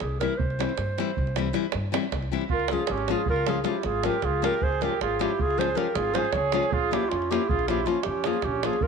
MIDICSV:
0, 0, Header, 1, 6, 480
1, 0, Start_track
1, 0, Tempo, 382653
1, 517, Time_signature, 11, 3, 24, 8
1, 11130, End_track
2, 0, Start_track
2, 0, Title_t, "Clarinet"
2, 0, Program_c, 0, 71
2, 10, Note_on_c, 0, 68, 66
2, 239, Note_off_c, 0, 68, 0
2, 246, Note_on_c, 0, 70, 94
2, 477, Note_on_c, 0, 72, 75
2, 495, Note_off_c, 0, 70, 0
2, 2641, Note_off_c, 0, 72, 0
2, 3172, Note_on_c, 0, 70, 85
2, 3414, Note_on_c, 0, 68, 76
2, 3433, Note_off_c, 0, 70, 0
2, 3652, Note_on_c, 0, 67, 74
2, 3671, Note_off_c, 0, 68, 0
2, 3904, Note_on_c, 0, 68, 83
2, 3923, Note_off_c, 0, 67, 0
2, 4126, Note_off_c, 0, 68, 0
2, 4137, Note_on_c, 0, 70, 105
2, 4382, Note_on_c, 0, 68, 84
2, 4401, Note_off_c, 0, 70, 0
2, 4544, Note_off_c, 0, 68, 0
2, 4544, Note_on_c, 0, 68, 61
2, 4608, Note_on_c, 0, 67, 75
2, 4626, Note_off_c, 0, 68, 0
2, 4831, Note_on_c, 0, 68, 90
2, 4850, Note_off_c, 0, 67, 0
2, 5078, Note_on_c, 0, 70, 96
2, 5097, Note_off_c, 0, 68, 0
2, 5318, Note_on_c, 0, 68, 81
2, 5337, Note_off_c, 0, 70, 0
2, 5567, Note_off_c, 0, 68, 0
2, 5584, Note_on_c, 0, 70, 111
2, 5812, Note_on_c, 0, 72, 98
2, 5830, Note_off_c, 0, 70, 0
2, 6051, Note_on_c, 0, 70, 83
2, 6069, Note_off_c, 0, 72, 0
2, 6275, Note_off_c, 0, 70, 0
2, 6290, Note_on_c, 0, 68, 83
2, 6535, Note_on_c, 0, 67, 89
2, 6553, Note_off_c, 0, 68, 0
2, 6790, Note_on_c, 0, 68, 110
2, 6809, Note_off_c, 0, 67, 0
2, 7009, Note_on_c, 0, 72, 98
2, 7028, Note_off_c, 0, 68, 0
2, 7235, Note_on_c, 0, 70, 88
2, 7253, Note_off_c, 0, 72, 0
2, 7463, Note_on_c, 0, 68, 94
2, 7482, Note_off_c, 0, 70, 0
2, 7707, Note_on_c, 0, 72, 106
2, 7726, Note_off_c, 0, 68, 0
2, 7924, Note_on_c, 0, 73, 86
2, 7943, Note_off_c, 0, 72, 0
2, 8422, Note_on_c, 0, 68, 84
2, 8441, Note_off_c, 0, 73, 0
2, 8695, Note_on_c, 0, 67, 92
2, 8714, Note_off_c, 0, 68, 0
2, 8903, Note_on_c, 0, 65, 90
2, 8921, Note_off_c, 0, 67, 0
2, 9171, Note_on_c, 0, 67, 87
2, 9189, Note_off_c, 0, 65, 0
2, 9389, Note_on_c, 0, 68, 92
2, 9407, Note_off_c, 0, 67, 0
2, 9639, Note_off_c, 0, 68, 0
2, 9647, Note_on_c, 0, 67, 78
2, 9855, Note_on_c, 0, 65, 82
2, 9874, Note_off_c, 0, 67, 0
2, 10081, Note_on_c, 0, 67, 88
2, 10100, Note_off_c, 0, 65, 0
2, 10353, Note_on_c, 0, 68, 108
2, 10371, Note_off_c, 0, 67, 0
2, 10587, Note_on_c, 0, 67, 81
2, 10605, Note_off_c, 0, 68, 0
2, 10853, Note_on_c, 0, 68, 100
2, 10872, Note_off_c, 0, 67, 0
2, 11074, Note_on_c, 0, 70, 98
2, 11093, Note_off_c, 0, 68, 0
2, 11130, Note_off_c, 0, 70, 0
2, 11130, End_track
3, 0, Start_track
3, 0, Title_t, "Trumpet"
3, 0, Program_c, 1, 56
3, 3139, Note_on_c, 1, 65, 99
3, 3415, Note_off_c, 1, 65, 0
3, 3415, Note_on_c, 1, 65, 75
3, 3642, Note_on_c, 1, 61, 82
3, 3661, Note_off_c, 1, 65, 0
3, 3897, Note_on_c, 1, 65, 65
3, 3916, Note_off_c, 1, 61, 0
3, 4122, Note_off_c, 1, 65, 0
3, 4131, Note_on_c, 1, 65, 90
3, 4386, Note_off_c, 1, 65, 0
3, 4386, Note_on_c, 1, 65, 75
3, 4549, Note_off_c, 1, 65, 0
3, 4549, Note_on_c, 1, 65, 44
3, 4613, Note_on_c, 1, 64, 61
3, 4632, Note_off_c, 1, 65, 0
3, 4823, Note_on_c, 1, 65, 79
3, 4842, Note_off_c, 1, 64, 0
3, 5093, Note_on_c, 1, 67, 80
3, 5111, Note_off_c, 1, 65, 0
3, 5332, Note_on_c, 1, 65, 90
3, 5350, Note_off_c, 1, 67, 0
3, 5574, Note_off_c, 1, 65, 0
3, 5580, Note_on_c, 1, 67, 74
3, 5800, Note_on_c, 1, 68, 79
3, 5819, Note_off_c, 1, 67, 0
3, 6057, Note_on_c, 1, 67, 81
3, 6076, Note_off_c, 1, 68, 0
3, 6279, Note_off_c, 1, 67, 0
3, 6295, Note_on_c, 1, 65, 87
3, 6536, Note_on_c, 1, 64, 72
3, 6555, Note_off_c, 1, 65, 0
3, 6781, Note_on_c, 1, 65, 82
3, 6800, Note_off_c, 1, 64, 0
3, 7019, Note_on_c, 1, 68, 79
3, 7038, Note_off_c, 1, 65, 0
3, 7262, Note_on_c, 1, 67, 75
3, 7281, Note_off_c, 1, 68, 0
3, 7478, Note_on_c, 1, 65, 94
3, 7497, Note_off_c, 1, 67, 0
3, 7756, Note_on_c, 1, 68, 88
3, 7775, Note_off_c, 1, 65, 0
3, 7954, Note_off_c, 1, 68, 0
3, 7954, Note_on_c, 1, 68, 102
3, 8448, Note_on_c, 1, 65, 97
3, 8467, Note_off_c, 1, 68, 0
3, 8684, Note_on_c, 1, 64, 82
3, 8703, Note_off_c, 1, 65, 0
3, 8902, Note_on_c, 1, 61, 72
3, 8921, Note_off_c, 1, 64, 0
3, 9170, Note_on_c, 1, 64, 82
3, 9188, Note_off_c, 1, 61, 0
3, 9402, Note_on_c, 1, 65, 95
3, 9421, Note_off_c, 1, 64, 0
3, 9641, Note_off_c, 1, 65, 0
3, 9649, Note_on_c, 1, 64, 85
3, 9888, Note_on_c, 1, 61, 68
3, 9907, Note_off_c, 1, 64, 0
3, 10125, Note_off_c, 1, 61, 0
3, 10125, Note_on_c, 1, 61, 74
3, 10373, Note_on_c, 1, 65, 77
3, 10391, Note_off_c, 1, 61, 0
3, 10586, Note_on_c, 1, 61, 90
3, 10605, Note_off_c, 1, 65, 0
3, 10840, Note_on_c, 1, 65, 70
3, 10859, Note_off_c, 1, 61, 0
3, 11059, Note_off_c, 1, 65, 0
3, 11059, Note_on_c, 1, 65, 90
3, 11130, Note_off_c, 1, 65, 0
3, 11130, End_track
4, 0, Start_track
4, 0, Title_t, "Nylon-string guitar"
4, 0, Program_c, 2, 24
4, 256, Note_on_c, 2, 52, 59
4, 266, Note_on_c, 2, 55, 56
4, 276, Note_on_c, 2, 60, 55
4, 286, Note_on_c, 2, 64, 69
4, 403, Note_off_c, 2, 52, 0
4, 409, Note_off_c, 2, 55, 0
4, 413, Note_off_c, 2, 60, 0
4, 419, Note_off_c, 2, 64, 0
4, 738, Note_on_c, 2, 52, 57
4, 746, Note_on_c, 2, 55, 52
4, 753, Note_on_c, 2, 60, 52
4, 760, Note_on_c, 2, 64, 57
4, 887, Note_off_c, 2, 52, 0
4, 891, Note_off_c, 2, 55, 0
4, 894, Note_off_c, 2, 60, 0
4, 898, Note_off_c, 2, 64, 0
4, 1227, Note_on_c, 2, 52, 75
4, 1238, Note_on_c, 2, 55, 69
4, 1243, Note_on_c, 2, 60, 69
4, 1252, Note_on_c, 2, 64, 82
4, 1374, Note_off_c, 2, 52, 0
4, 1380, Note_off_c, 2, 55, 0
4, 1381, Note_off_c, 2, 60, 0
4, 1387, Note_off_c, 2, 64, 0
4, 1702, Note_on_c, 2, 52, 76
4, 1717, Note_on_c, 2, 55, 66
4, 1725, Note_on_c, 2, 60, 65
4, 1734, Note_on_c, 2, 64, 83
4, 1844, Note_off_c, 2, 52, 0
4, 1852, Note_off_c, 2, 55, 0
4, 1856, Note_off_c, 2, 60, 0
4, 1861, Note_off_c, 2, 64, 0
4, 1921, Note_on_c, 2, 52, 76
4, 1930, Note_on_c, 2, 55, 68
4, 1936, Note_on_c, 2, 60, 69
4, 1944, Note_on_c, 2, 64, 95
4, 2065, Note_off_c, 2, 52, 0
4, 2070, Note_off_c, 2, 55, 0
4, 2072, Note_off_c, 2, 60, 0
4, 2076, Note_off_c, 2, 64, 0
4, 2408, Note_on_c, 2, 52, 70
4, 2419, Note_on_c, 2, 55, 72
4, 2425, Note_on_c, 2, 60, 74
4, 2436, Note_on_c, 2, 64, 77
4, 2552, Note_off_c, 2, 52, 0
4, 2558, Note_off_c, 2, 55, 0
4, 2560, Note_off_c, 2, 60, 0
4, 2566, Note_off_c, 2, 64, 0
4, 2905, Note_on_c, 2, 52, 72
4, 2914, Note_on_c, 2, 55, 59
4, 2916, Note_on_c, 2, 60, 68
4, 2923, Note_on_c, 2, 64, 89
4, 3043, Note_off_c, 2, 52, 0
4, 3048, Note_off_c, 2, 55, 0
4, 3048, Note_off_c, 2, 60, 0
4, 3052, Note_off_c, 2, 64, 0
4, 3402, Note_on_c, 2, 53, 54
4, 3407, Note_on_c, 2, 56, 49
4, 3408, Note_on_c, 2, 61, 57
4, 3420, Note_on_c, 2, 65, 72
4, 3535, Note_off_c, 2, 53, 0
4, 3537, Note_off_c, 2, 56, 0
4, 3538, Note_off_c, 2, 61, 0
4, 3544, Note_off_c, 2, 65, 0
4, 3872, Note_on_c, 2, 53, 70
4, 3880, Note_on_c, 2, 56, 67
4, 3892, Note_on_c, 2, 61, 60
4, 3897, Note_on_c, 2, 65, 78
4, 4013, Note_off_c, 2, 53, 0
4, 4017, Note_off_c, 2, 56, 0
4, 4024, Note_off_c, 2, 61, 0
4, 4024, Note_off_c, 2, 65, 0
4, 4350, Note_on_c, 2, 56, 57
4, 4352, Note_on_c, 2, 53, 66
4, 4363, Note_on_c, 2, 61, 60
4, 4368, Note_on_c, 2, 65, 72
4, 4485, Note_off_c, 2, 56, 0
4, 4487, Note_off_c, 2, 53, 0
4, 4492, Note_off_c, 2, 61, 0
4, 4495, Note_off_c, 2, 65, 0
4, 4564, Note_on_c, 2, 56, 64
4, 4567, Note_on_c, 2, 53, 70
4, 4576, Note_on_c, 2, 61, 59
4, 4584, Note_on_c, 2, 65, 83
4, 4703, Note_off_c, 2, 56, 0
4, 4706, Note_off_c, 2, 53, 0
4, 4710, Note_off_c, 2, 61, 0
4, 4714, Note_off_c, 2, 65, 0
4, 5059, Note_on_c, 2, 53, 66
4, 5072, Note_on_c, 2, 56, 54
4, 5079, Note_on_c, 2, 61, 62
4, 5084, Note_on_c, 2, 65, 66
4, 5195, Note_off_c, 2, 53, 0
4, 5202, Note_off_c, 2, 56, 0
4, 5206, Note_off_c, 2, 61, 0
4, 5206, Note_off_c, 2, 65, 0
4, 5545, Note_on_c, 2, 53, 69
4, 5551, Note_on_c, 2, 56, 67
4, 5553, Note_on_c, 2, 61, 64
4, 5563, Note_on_c, 2, 65, 72
4, 5683, Note_off_c, 2, 53, 0
4, 5683, Note_off_c, 2, 56, 0
4, 5686, Note_off_c, 2, 61, 0
4, 5691, Note_off_c, 2, 65, 0
4, 6033, Note_on_c, 2, 53, 58
4, 6042, Note_on_c, 2, 56, 49
4, 6048, Note_on_c, 2, 61, 58
4, 6056, Note_on_c, 2, 65, 66
4, 6170, Note_off_c, 2, 53, 0
4, 6174, Note_off_c, 2, 56, 0
4, 6177, Note_off_c, 2, 61, 0
4, 6182, Note_off_c, 2, 65, 0
4, 6514, Note_on_c, 2, 53, 71
4, 6520, Note_on_c, 2, 56, 67
4, 6529, Note_on_c, 2, 61, 64
4, 6535, Note_on_c, 2, 65, 80
4, 6654, Note_off_c, 2, 53, 0
4, 6657, Note_off_c, 2, 56, 0
4, 6662, Note_off_c, 2, 61, 0
4, 6664, Note_off_c, 2, 65, 0
4, 6995, Note_on_c, 2, 53, 67
4, 7003, Note_on_c, 2, 56, 55
4, 7011, Note_on_c, 2, 61, 60
4, 7020, Note_on_c, 2, 65, 63
4, 7129, Note_off_c, 2, 53, 0
4, 7132, Note_off_c, 2, 56, 0
4, 7137, Note_off_c, 2, 61, 0
4, 7141, Note_off_c, 2, 65, 0
4, 7215, Note_on_c, 2, 53, 64
4, 7223, Note_on_c, 2, 56, 60
4, 7232, Note_on_c, 2, 61, 68
4, 7238, Note_on_c, 2, 65, 76
4, 7350, Note_off_c, 2, 53, 0
4, 7355, Note_off_c, 2, 56, 0
4, 7359, Note_off_c, 2, 61, 0
4, 7362, Note_off_c, 2, 65, 0
4, 7697, Note_on_c, 2, 53, 68
4, 7709, Note_on_c, 2, 56, 54
4, 7721, Note_on_c, 2, 61, 49
4, 7722, Note_on_c, 2, 65, 59
4, 7836, Note_off_c, 2, 53, 0
4, 7842, Note_off_c, 2, 56, 0
4, 7847, Note_off_c, 2, 65, 0
4, 7848, Note_off_c, 2, 61, 0
4, 8191, Note_on_c, 2, 53, 68
4, 8199, Note_on_c, 2, 56, 64
4, 8200, Note_on_c, 2, 61, 66
4, 8207, Note_on_c, 2, 65, 75
4, 8329, Note_off_c, 2, 53, 0
4, 8329, Note_off_c, 2, 56, 0
4, 8332, Note_off_c, 2, 61, 0
4, 8334, Note_off_c, 2, 65, 0
4, 8666, Note_on_c, 2, 53, 49
4, 8675, Note_on_c, 2, 58, 51
4, 8683, Note_on_c, 2, 61, 54
4, 8697, Note_on_c, 2, 65, 70
4, 8809, Note_off_c, 2, 53, 0
4, 8814, Note_off_c, 2, 58, 0
4, 8818, Note_off_c, 2, 61, 0
4, 8825, Note_off_c, 2, 65, 0
4, 9164, Note_on_c, 2, 53, 66
4, 9168, Note_on_c, 2, 58, 66
4, 9176, Note_on_c, 2, 61, 60
4, 9183, Note_on_c, 2, 65, 80
4, 9303, Note_off_c, 2, 53, 0
4, 9303, Note_off_c, 2, 58, 0
4, 9309, Note_off_c, 2, 61, 0
4, 9313, Note_off_c, 2, 65, 0
4, 9638, Note_on_c, 2, 53, 71
4, 9645, Note_on_c, 2, 58, 61
4, 9657, Note_on_c, 2, 61, 52
4, 9660, Note_on_c, 2, 65, 77
4, 9775, Note_off_c, 2, 53, 0
4, 9778, Note_off_c, 2, 58, 0
4, 9784, Note_off_c, 2, 65, 0
4, 9785, Note_off_c, 2, 61, 0
4, 9856, Note_on_c, 2, 53, 71
4, 9867, Note_on_c, 2, 58, 62
4, 9874, Note_on_c, 2, 61, 54
4, 9881, Note_on_c, 2, 65, 69
4, 9996, Note_off_c, 2, 53, 0
4, 10001, Note_off_c, 2, 58, 0
4, 10005, Note_off_c, 2, 61, 0
4, 10007, Note_off_c, 2, 65, 0
4, 10352, Note_on_c, 2, 53, 63
4, 10360, Note_on_c, 2, 58, 65
4, 10363, Note_on_c, 2, 61, 58
4, 10370, Note_on_c, 2, 65, 73
4, 10490, Note_off_c, 2, 53, 0
4, 10492, Note_off_c, 2, 58, 0
4, 10495, Note_off_c, 2, 61, 0
4, 10498, Note_off_c, 2, 65, 0
4, 10828, Note_on_c, 2, 53, 62
4, 10836, Note_on_c, 2, 58, 59
4, 10840, Note_on_c, 2, 61, 58
4, 10848, Note_on_c, 2, 65, 60
4, 10973, Note_off_c, 2, 53, 0
4, 10977, Note_off_c, 2, 58, 0
4, 10978, Note_off_c, 2, 61, 0
4, 10982, Note_off_c, 2, 65, 0
4, 11130, End_track
5, 0, Start_track
5, 0, Title_t, "Upright bass"
5, 0, Program_c, 3, 32
5, 16, Note_on_c, 3, 36, 87
5, 312, Note_off_c, 3, 36, 0
5, 500, Note_on_c, 3, 36, 73
5, 796, Note_off_c, 3, 36, 0
5, 976, Note_on_c, 3, 43, 70
5, 1275, Note_off_c, 3, 43, 0
5, 1476, Note_on_c, 3, 36, 90
5, 1893, Note_off_c, 3, 36, 0
5, 2187, Note_on_c, 3, 43, 96
5, 2475, Note_off_c, 3, 43, 0
5, 2663, Note_on_c, 3, 36, 84
5, 2954, Note_off_c, 3, 36, 0
5, 3163, Note_on_c, 3, 37, 68
5, 3450, Note_off_c, 3, 37, 0
5, 3635, Note_on_c, 3, 32, 72
5, 3926, Note_off_c, 3, 32, 0
5, 4127, Note_on_c, 3, 37, 75
5, 4539, Note_off_c, 3, 37, 0
5, 4822, Note_on_c, 3, 32, 77
5, 5111, Note_off_c, 3, 32, 0
5, 5307, Note_on_c, 3, 37, 88
5, 5597, Note_off_c, 3, 37, 0
5, 5798, Note_on_c, 3, 37, 70
5, 6087, Note_off_c, 3, 37, 0
5, 6287, Note_on_c, 3, 32, 56
5, 6575, Note_off_c, 3, 32, 0
5, 6784, Note_on_c, 3, 37, 72
5, 7192, Note_off_c, 3, 37, 0
5, 7469, Note_on_c, 3, 32, 88
5, 7757, Note_off_c, 3, 32, 0
5, 7966, Note_on_c, 3, 37, 92
5, 8252, Note_off_c, 3, 37, 0
5, 8438, Note_on_c, 3, 34, 82
5, 8729, Note_off_c, 3, 34, 0
5, 8937, Note_on_c, 3, 41, 68
5, 9225, Note_off_c, 3, 41, 0
5, 9418, Note_on_c, 3, 34, 91
5, 9832, Note_off_c, 3, 34, 0
5, 10115, Note_on_c, 3, 41, 82
5, 10406, Note_off_c, 3, 41, 0
5, 10605, Note_on_c, 3, 34, 84
5, 10896, Note_off_c, 3, 34, 0
5, 11071, Note_on_c, 3, 34, 79
5, 11130, Note_off_c, 3, 34, 0
5, 11130, End_track
6, 0, Start_track
6, 0, Title_t, "Davul"
6, 3, Note_on_c, 9, 37, 60
6, 128, Note_off_c, 9, 37, 0
6, 264, Note_on_c, 9, 37, 70
6, 389, Note_off_c, 9, 37, 0
6, 495, Note_on_c, 9, 43, 107
6, 621, Note_off_c, 9, 43, 0
6, 631, Note_on_c, 9, 37, 25
6, 757, Note_off_c, 9, 37, 0
6, 758, Note_on_c, 9, 37, 76
6, 868, Note_off_c, 9, 37, 0
6, 868, Note_on_c, 9, 37, 22
6, 972, Note_off_c, 9, 37, 0
6, 972, Note_on_c, 9, 37, 69
6, 1098, Note_off_c, 9, 37, 0
6, 1234, Note_on_c, 9, 37, 61
6, 1360, Note_off_c, 9, 37, 0
6, 1466, Note_on_c, 9, 43, 83
6, 1592, Note_off_c, 9, 43, 0
6, 1595, Note_on_c, 9, 37, 29
6, 1706, Note_off_c, 9, 37, 0
6, 1706, Note_on_c, 9, 37, 71
6, 1832, Note_off_c, 9, 37, 0
6, 1932, Note_on_c, 9, 37, 61
6, 2055, Note_off_c, 9, 37, 0
6, 2055, Note_on_c, 9, 37, 18
6, 2159, Note_off_c, 9, 37, 0
6, 2159, Note_on_c, 9, 37, 75
6, 2284, Note_off_c, 9, 37, 0
6, 2432, Note_on_c, 9, 37, 87
6, 2558, Note_off_c, 9, 37, 0
6, 2663, Note_on_c, 9, 37, 73
6, 2663, Note_on_c, 9, 43, 59
6, 2788, Note_off_c, 9, 37, 0
6, 2788, Note_off_c, 9, 43, 0
6, 2791, Note_on_c, 9, 37, 27
6, 2917, Note_off_c, 9, 37, 0
6, 3028, Note_on_c, 9, 37, 28
6, 3130, Note_on_c, 9, 43, 97
6, 3154, Note_off_c, 9, 37, 0
6, 3256, Note_off_c, 9, 43, 0
6, 3256, Note_on_c, 9, 37, 23
6, 3364, Note_off_c, 9, 37, 0
6, 3364, Note_on_c, 9, 37, 80
6, 3490, Note_off_c, 9, 37, 0
6, 3602, Note_on_c, 9, 37, 78
6, 3727, Note_off_c, 9, 37, 0
6, 3732, Note_on_c, 9, 37, 31
6, 3857, Note_off_c, 9, 37, 0
6, 3863, Note_on_c, 9, 37, 67
6, 3989, Note_off_c, 9, 37, 0
6, 4090, Note_on_c, 9, 43, 87
6, 4216, Note_off_c, 9, 43, 0
6, 4216, Note_on_c, 9, 37, 30
6, 4342, Note_off_c, 9, 37, 0
6, 4347, Note_on_c, 9, 37, 76
6, 4473, Note_off_c, 9, 37, 0
6, 4574, Note_on_c, 9, 37, 60
6, 4699, Note_off_c, 9, 37, 0
6, 4809, Note_on_c, 9, 37, 63
6, 4934, Note_off_c, 9, 37, 0
6, 5061, Note_on_c, 9, 37, 75
6, 5186, Note_off_c, 9, 37, 0
6, 5192, Note_on_c, 9, 37, 21
6, 5297, Note_off_c, 9, 37, 0
6, 5297, Note_on_c, 9, 37, 56
6, 5297, Note_on_c, 9, 43, 62
6, 5423, Note_off_c, 9, 37, 0
6, 5423, Note_off_c, 9, 43, 0
6, 5568, Note_on_c, 9, 37, 73
6, 5693, Note_off_c, 9, 37, 0
6, 5694, Note_on_c, 9, 37, 26
6, 5790, Note_on_c, 9, 43, 94
6, 5820, Note_off_c, 9, 37, 0
6, 5915, Note_off_c, 9, 43, 0
6, 5925, Note_on_c, 9, 37, 20
6, 6044, Note_off_c, 9, 37, 0
6, 6044, Note_on_c, 9, 37, 59
6, 6169, Note_off_c, 9, 37, 0
6, 6288, Note_on_c, 9, 37, 69
6, 6413, Note_off_c, 9, 37, 0
6, 6535, Note_on_c, 9, 37, 65
6, 6661, Note_off_c, 9, 37, 0
6, 6766, Note_on_c, 9, 43, 84
6, 6892, Note_off_c, 9, 43, 0
6, 6905, Note_on_c, 9, 37, 26
6, 7031, Note_off_c, 9, 37, 0
6, 7036, Note_on_c, 9, 37, 71
6, 7161, Note_off_c, 9, 37, 0
6, 7244, Note_on_c, 9, 37, 66
6, 7370, Note_off_c, 9, 37, 0
6, 7469, Note_on_c, 9, 37, 76
6, 7595, Note_off_c, 9, 37, 0
6, 7714, Note_on_c, 9, 37, 76
6, 7838, Note_off_c, 9, 37, 0
6, 7838, Note_on_c, 9, 37, 23
6, 7935, Note_off_c, 9, 37, 0
6, 7935, Note_on_c, 9, 37, 70
6, 7935, Note_on_c, 9, 43, 74
6, 8060, Note_off_c, 9, 37, 0
6, 8060, Note_off_c, 9, 43, 0
6, 8182, Note_on_c, 9, 37, 80
6, 8307, Note_off_c, 9, 37, 0
6, 8321, Note_on_c, 9, 37, 30
6, 8433, Note_on_c, 9, 43, 98
6, 8446, Note_off_c, 9, 37, 0
6, 8559, Note_off_c, 9, 43, 0
6, 8694, Note_on_c, 9, 37, 78
6, 8819, Note_off_c, 9, 37, 0
6, 8925, Note_on_c, 9, 37, 60
6, 9051, Note_off_c, 9, 37, 0
6, 9056, Note_on_c, 9, 37, 27
6, 9181, Note_off_c, 9, 37, 0
6, 9188, Note_on_c, 9, 37, 68
6, 9313, Note_off_c, 9, 37, 0
6, 9400, Note_on_c, 9, 43, 95
6, 9521, Note_on_c, 9, 37, 27
6, 9526, Note_off_c, 9, 43, 0
6, 9637, Note_off_c, 9, 37, 0
6, 9637, Note_on_c, 9, 37, 69
6, 9763, Note_off_c, 9, 37, 0
6, 9871, Note_on_c, 9, 37, 55
6, 9997, Note_off_c, 9, 37, 0
6, 10078, Note_on_c, 9, 37, 72
6, 10203, Note_off_c, 9, 37, 0
6, 10334, Note_on_c, 9, 37, 73
6, 10454, Note_off_c, 9, 37, 0
6, 10454, Note_on_c, 9, 37, 21
6, 10565, Note_off_c, 9, 37, 0
6, 10565, Note_on_c, 9, 37, 61
6, 10565, Note_on_c, 9, 43, 57
6, 10691, Note_off_c, 9, 37, 0
6, 10691, Note_off_c, 9, 43, 0
6, 10827, Note_on_c, 9, 37, 75
6, 10952, Note_off_c, 9, 37, 0
6, 10954, Note_on_c, 9, 37, 29
6, 11050, Note_on_c, 9, 43, 94
6, 11080, Note_off_c, 9, 37, 0
6, 11130, Note_off_c, 9, 43, 0
6, 11130, End_track
0, 0, End_of_file